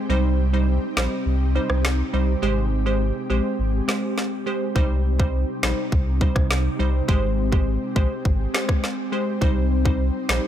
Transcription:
0.00 4.72 C4 medium
0.00 9.38 G4 medium
0.09 0.79 C2 loud
0.09 2.40 C3 medium
0.09 0.50 G3 medium
0.09 0.50 D#4 medium
0.09 2.40 D#4 medium
0.09 0.50 C5 loud
0.53 0.70 G3 medium
0.53 0.70 D#4 medium
0.53 0.70 C5 medium
0.97 1.08 A#1 medium
0.97 1.14 G3 medium
0.97 1.14 D#4 medium
0.97 1.14 C5 medium
0.97 snare loud
1.26 1.59 C2 loud
1.55 1.72 G3 medium
1.55 1.72 D#4 medium
1.55 1.72 C5 medium
1.70 2.03 C2 medium
1.70 cross-stick medium
1.85 snare loud
2.13 2.36 C2 medium
2.13 2.30 G3 medium
2.13 2.30 D#4 medium
2.13 2.31 C5 medium
2.42 3.12 G#1 loud
2.42 2.83 G#3 loud
2.42 4.73 G#3 medium
2.42 2.83 G4 medium
2.42 2.83 C5 loud
2.86 3.03 G#3 medium
2.86 3.03 G4 medium
2.86 3.03 C5 medium
3.30 3.41 A#1 medium
3.30 3.47 G#3 medium
3.30 3.47 G4 medium
3.30 3.47 C5 medium
3.59 3.81 G#1 loud
3.88 4.05 G#3 medium
3.88 4.05 G4 medium
3.88 4.05 C5 medium
3.88 snare loud
4.18 snare medium
4.46 4.63 G#3 medium
4.46 4.63 G4 medium
4.46 4.64 C5 medium
4.75 5.45 C2 loud
4.75 7.06 C3 medium
4.75 5.16 G3 loud
4.75 10.47 C4 medium
4.75 5.16 D#4 medium
4.75 7.06 D#4 medium
4.75 5.16 C5 loud
4.75 kick loud
5.19 5.36 G3 medium
5.19 5.36 D#4 medium
5.19 5.36 C5 medium
5.19 kick medium
5.63 5.74 A#1 medium
5.63 5.80 G3 medium
5.63 5.80 D#4 medium
5.63 5.80 C5 medium
5.63 snare loud
5.92 6.25 C2 loud
5.92 kick medium
6.21 6.38 G3 medium
6.21 6.38 D#4 medium
6.21 6.38 C5 medium
6.21 kick medium
6.36 6.69 C2 medium
6.36 kick medium
6.36 cross-stick medium
6.51 snare loud
6.79 7.02 C2 medium
6.79 6.96 G3 medium
6.79 6.96 D#4 medium
6.79 6.97 C5 medium
7.08 7.78 G#1 loud
7.08 7.49 G#3 loud
7.08 9.39 G#3 medium
7.08 7.49 G4 medium
7.08 7.49 C5 loud
7.08 kick loud
7.52 7.69 G#3 medium
7.52 7.69 G4 medium
7.52 7.69 C5 medium
7.52 kick medium
7.96 8.07 A#1 medium
7.96 8.13 G#3 medium
7.96 8.13 G4 medium
7.96 8.13 C5 medium
7.96 kick medium
8.25 8.47 G#1 loud
8.25 kick medium
8.54 8.71 G#3 medium
8.54 8.71 G4 medium
8.54 8.71 C5 medium
8.54 snare loud
8.69 kick loud
8.69 cross-stick medium
8.84 snare medium
9.12 9.29 G#3 medium
9.12 9.29 G4 medium
9.12 9.29 C5 medium
9.41 10.11 C2 loud
9.41 10.47 C3 medium
9.41 9.82 G3 medium
9.41 9.82 D#4 medium
9.41 10.47 D#4 medium
9.41 10.47 G4 medium
9.41 9.82 C5 loud
9.41 kick loud
9.85 10.02 G3 medium
9.85 10.02 D#4 medium
9.85 10.02 C5 medium
9.85 kick medium
10.29 10.40 A#1 loud
10.29 10.46 G3 medium
10.29 10.46 D#4 medium
10.29 10.46 C5 medium
10.29 snare loud

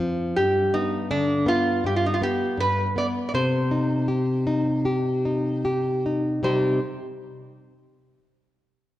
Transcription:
0.00 0.32 F2 medium
0.00 0.35 F3 medium
0.36 1.83 G2 medium
0.36 0.74 G4 medium
0.74 1.09 B3 medium
0.74 1.08 D#4 medium
1.11 1.46 D3 medium
1.11 1.45 D4 medium
1.46 1.82 B3 medium
1.46 1.83 F4 medium
1.84 2.20 G2 medium
1.84 1.95 G4 medium
1.96 2.04 F4 medium
2.06 2.14 D#4 medium
2.14 2.22 F4 medium
2.22 2.58 B3 medium
2.22 2.57 G4 medium
2.57 2.94 G2 medium
2.57 2.94 B4 loud
2.96 3.32 B3 medium
2.96 3.06 D5 medium
3.29 3.34 D5 medium
3.34 6.41 C3 medium
3.34 6.03 C5 medium
3.71 4.07 D#4 medium
4.08 4.45 G4 medium
4.47 4.85 D#4 medium
4.85 5.24 G4 medium
5.25 5.65 D#4 medium
5.65 6.04 G4 medium
6.06 6.43 D#4 soft
6.43 6.78 C3 medium
6.43 6.79 G3 soft
6.43 6.79 C4 soft
6.43 6.79 D#4 soft
6.43 6.80 G4 medium
6.43 6.79 C5 medium

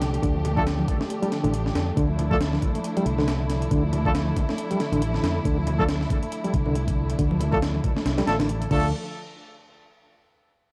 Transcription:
0.00 0.17 C2 medium
0.00 0.22 D3 medium
0.00 8.67 F3 medium
0.00 8.67 A3 medium
0.00 8.67 D4 medium
0.00 1.95 G4 loud
0.00 snare medium
0.00 closed hi-hat medium
0.14 closed hi-hat soft
0.23 0.83 D2 loud
0.23 0.34 D3 loud
0.23 kick loud
0.23 closed hi-hat medium
0.35 0.78 F3 medium
0.45 closed hi-hat medium
0.45 low conga loud
0.57 0.63 A3 medium
0.57 0.63 D4 medium
0.57 0.63 F4 medium
0.57 0.63 A4 loud
0.57 kick loud
0.57 high conga medium
0.67 snare loud
0.67 closed hi-hat medium
0.79 0.99 D3 medium
0.79 high conga medium
0.88 kick loud
0.88 closed hi-hat medium
0.88 low conga medium
1.00 1.04 A3 medium
1.00 snare medium
1.10 closed hi-hat medium
1.22 1.31 G3 loud
1.22 closed hi-hat soft
1.22 high conga medium
1.32 1.43 D3 medium
1.32 snare medium
1.32 closed hi-hat medium
1.44 1.70 A1 medium
1.44 1.53 D3 loud
1.44 closed hi-hat soft
1.44 low conga medium
1.54 closed hi-hat medium
1.66 1.96 D3 medium
1.66 snare soft
1.75 1.90 F2 medium
1.75 snare loud
1.75 closed hi-hat medium
1.97 2.57 D2 loud
1.97 2.08 D3 loud
1.97 8.67 E4 loud
1.97 kick loud
1.97 closed hi-hat medium
2.10 2.52 F3 medium
2.19 closed hi-hat medium
2.19 low conga medium
2.31 2.37 A3 loud
2.31 2.37 D4 medium
2.31 2.37 F4 medium
2.31 2.37 A4 loud
2.31 kick medium
2.31 high conga medium
2.41 snare loud
2.41 closed hi-hat medium
2.53 2.74 D3 medium
2.53 snare soft
2.53 high conga medium
2.62 kick loud
2.62 closed hi-hat medium
2.62 low conga medium
2.75 2.79 A3 medium
2.75 closed hi-hat soft
2.84 closed hi-hat medium
2.97 3.05 G3 loud
2.97 closed hi-hat soft
2.97 high conga medium
3.06 3.65 C2 medium
3.06 3.17 D3 medium
3.06 closed hi-hat medium
3.18 3.27 D3 loud
3.18 snare soft
3.18 low conga medium
3.28 snare loud
3.28 closed hi-hat medium
3.40 3.70 D3 medium
3.50 snare soft
3.50 closed hi-hat medium
3.62 closed hi-hat soft
3.71 4.31 D2 loud
3.71 3.82 D3 loud
3.71 kick loud
3.71 closed hi-hat medium
3.84 4.26 F3 medium
3.93 closed hi-hat medium
3.93 low conga medium
4.05 4.11 A3 medium
4.05 4.11 D4 medium
4.05 4.11 F4 medium
4.05 4.11 A4 loud
4.05 kick loud
4.05 high conga medium
4.15 snare loud
4.15 closed hi-hat medium
4.27 4.48 D3 medium
4.27 high conga medium
4.36 kick medium
4.36 closed hi-hat medium
4.36 low conga medium
4.49 4.52 A3 medium
4.49 snare medium
4.58 closed hi-hat medium
4.71 4.80 G3 loud
4.71 closed hi-hat soft
4.71 high conga medium
4.80 4.91 D3 medium
4.80 snare medium
4.80 closed hi-hat medium
4.92 5.18 A1 loud
4.92 5.01 D3 loud
4.92 closed hi-hat soft
4.92 low conga medium
5.02 closed hi-hat medium
5.14 5.44 D3 medium
5.14 snare soft
5.23 5.38 F2 loud
5.23 snare loud
5.23 closed hi-hat medium
5.45 6.05 D2 loud
5.45 5.56 D3 loud
5.45 kick loud
5.45 closed hi-hat medium
5.58 6.00 F3 medium
5.67 closed hi-hat medium
5.67 low conga loud
5.79 5.85 A3 loud
5.79 5.85 D4 medium
5.79 5.85 F4 medium
5.79 5.85 A4 loud
5.79 kick loud
5.79 high conga medium
5.89 snare loud
5.89 closed hi-hat medium
6.01 6.21 D3 medium
6.01 snare soft
6.01 high conga medium
6.09 kick loud
6.09 closed hi-hat medium
6.09 low conga medium
6.23 6.26 A3 medium
6.23 closed hi-hat soft
6.32 closed hi-hat medium
6.44 6.53 G3 loud
6.44 closed hi-hat soft
6.44 high conga medium
6.53 7.13 C2 medium
6.53 6.65 D3 medium
6.53 kick loud
6.53 closed hi-hat medium
6.66 6.75 D3 loud
6.66 low conga medium
6.75 closed hi-hat medium
6.88 7.17 D3 medium
6.88 kick loud
6.88 closed hi-hat medium
7.10 closed hi-hat medium
7.19 7.78 D2 loud
7.19 7.30 D3 loud
7.19 kick loud
7.19 closed hi-hat medium
7.31 7.74 F3 medium
7.31 high conga medium
7.39 closed hi-hat medium
7.39 low conga loud
7.52 7.59 A3 loud
7.52 7.59 D4 medium
7.52 7.59 F4 medium
7.52 7.59 A4 loud
7.52 kick loud
7.52 high conga medium
7.62 snare loud
7.62 closed hi-hat medium
7.75 7.95 D3 medium
7.75 high conga medium
7.84 kick loud
7.84 closed hi-hat medium
7.84 low conga medium
7.96 8.00 A3 medium
7.96 snare medium
8.06 8.20 C2 medium
8.06 snare loud
8.06 closed hi-hat medium
8.18 8.27 G3 loud
8.18 snare loud
8.18 closed hi-hat medium
8.18 high conga medium
8.27 8.65 A1 medium
8.27 8.38 D3 medium
8.27 8.35 A3 medium
8.27 8.35 D4 medium
8.27 8.35 F4 medium
8.27 8.35 A4 loud
8.27 snare loud
8.27 closed hi-hat medium
8.39 8.49 D3 loud
8.39 snare loud
8.39 closed hi-hat medium
8.39 low conga medium
8.49 closed hi-hat medium
8.61 8.69 D3 medium
8.61 closed hi-hat soft
8.71 8.91 D2 loud
8.71 8.91 D3 medium
8.71 8.91 F3 medium
8.71 8.88 A3 medium
8.71 8.91 A3 medium
8.71 8.88 D4 medium
8.71 8.91 D4 medium
8.71 8.88 F4 medium
8.71 8.91 A4 medium
8.71 8.88 A4 loud
8.71 kick loud
8.71 crash medium

